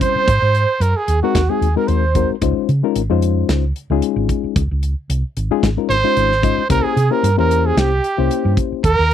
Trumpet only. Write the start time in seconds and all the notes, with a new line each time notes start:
0.01 C5
0.82 A#4
0.97 G#4
1.23 F#4
1.50 G#4
1.77 A#4
1.88 C5
5.89 C5
6.70 A#4
6.84 G#4
7.11 A#4
7.39 A#4
7.66 G#4
7.79 G4
8.84 A#4